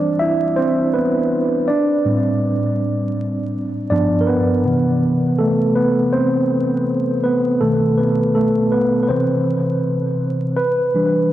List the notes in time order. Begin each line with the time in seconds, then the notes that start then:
Already playing: E3 G3 C4 D4 C5 D5
0.19 E4 E5
0.56 C4 C5
0.94 B3 B4
1.68 D4 D5
2.05 A2 G3 C4
3.90 G2 F3 B3 D4 D5
4.21 A#4
4.27 B3 B4
4.65 C3 E3 B3
5.38 A3 A4
5.76 B3 B4
6.13 C4 C5
7.24 B3 B4
7.61 B2 D#3 A3 A4
7.98 B3 B4
8.35 A3 A4
8.72 B3 B4
9.03 B4
9.09 C3 E3 C4 B4 C5
10.56 B4
10.94 E3 G3 D4